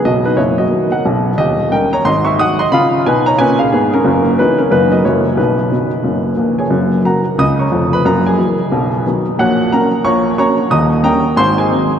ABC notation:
X:1
M:4/4
L:1/8
Q:"Swing" 1/4=180
K:B
V:1 name="Grand piano"
[Fd] [DB] [Ec] [Fd]2 [Af] z2 | [=Gd]2 [A=g] [ca] [d=c'] [e^c'] [fd'] [d=c'] | [^eb]2 [Bg] [ca] [Bg] [Ge] [B,G] [CA]- | [CA]2 [DB] [CA] [DB] [Fd] [Ec]2 |
[DB]6- [DB] [Gcg]- | [K:F#] [Gcg]2 [Afa]2 [dd'] [cac']2 [Bb] | [Aa] [Gg]4- [Gg] z2 | [Fcf]2 [Afa]2 [cac']2 [cac']2 |
[dad']2 [A=ga]2 [^B^b] [^Gd^g]2 z |]
V:2 name="Grand piano" clef=bass
[B,,,B,,]2 [F,,,F,,]2 [D,F,B,]2 [B,,,B,,]2 | [D,,,D,,]2 [D,=G,C]2 [^G,,,G,,]2 [F,^G,D]2 | [C,^E]2 [B,,D]2 [A,,C]2 G,,2 | [F,,,F,,]2 [E,F,C]2 [F,,,F,,D,F,B,]2 [F,,,F,,E,=G,A,]2 |
[B,,,B,,]2 [D,F,B,]2 [F,,,F,,]2 [A,,,A,,]2 | [K:F#] [F,,,F,,]2 [C,F,A,]2 [C,,C,]2 [E,,,E,,]2 | [F,,,F,,]2 [=E,F,A,]2 [B,,,B,,]2 [D,F,B,]2 | [A,,,A,,]2 [F,A,C]2 [A,,,A,,]2 [F,A,C]2 |
[D,,,D,,]2 [=G,A,C]2 [^G,,,G,,]2 [F,^G,^B,]2 |]